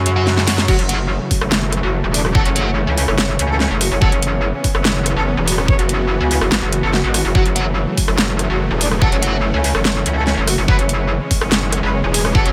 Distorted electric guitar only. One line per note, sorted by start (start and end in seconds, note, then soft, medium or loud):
0.16 0.24 F#4 medium
0.16 0.24 C#5 medium
0.16 0.24 F#5 medium
0.47 0.55 F#4 medium
0.47 0.55 C#5 medium
0.47 0.55 F#5 loud
0.68 0.76 F#4 medium
0.68 0.76 C#5 medium
0.68 0.76 F#5 medium
0.89 0.97 F#4 medium
0.89 0.97 C#5 medium
0.89 0.97 F#5 loud
2.35 2.47 F#4 medium
2.35 2.47 C#5 medium
2.35 2.47 F#5 medium
2.56 2.68 F#4 medium
2.56 2.68 C#5 medium
2.56 2.68 F#5 medium
4.01 4.09 F#4 medium
4.01 4.09 C#5 medium
4.01 4.09 F#5 medium
7.35 7.43 F#4 medium
7.35 7.43 C#5 medium
7.35 7.43 F#5 medium
7.56 7.64 F#4 medium
7.56 7.64 C#5 medium
7.56 7.64 F#5 loud
9.01 9.14 F#4 medium
9.01 9.14 C#5 medium
9.01 9.14 F#5 medium
9.22 9.35 F#4 medium
9.22 9.35 C#5 medium
9.22 9.35 F#5 medium
10.68 10.76 F#4 medium
10.68 10.76 C#5 medium
10.68 10.76 F#5 medium
12.35 12.47 F#4 medium
12.35 12.47 C#5 medium
12.35 12.47 F#5 medium